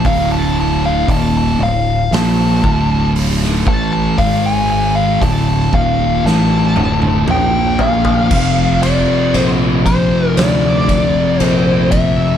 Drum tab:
CC |----------------|----------------|x---------------|
RD |----------------|----------------|--x-x-x-x-x-x-x-|
HH |o---o---o---o---|o---o-----------|----------------|
SD |--------o----o--|--------o-------|--------o-o-----|
T1 |----------------|----------oo----|----------------|
T2 |----------------|------------o---|----------------|
FT |----------------|--------------oo|----------------|
BD |o---o-----o---o-|o---o-o---------|o-----o---o---o-|